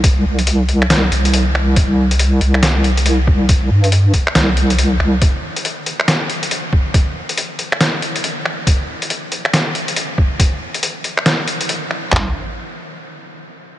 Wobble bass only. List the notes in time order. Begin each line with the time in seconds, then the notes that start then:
Already playing: C2
0.25 C2
1.12 C2
2.41 C2
3.71 G2
4.35 C2
5.00 C2
12.12 C2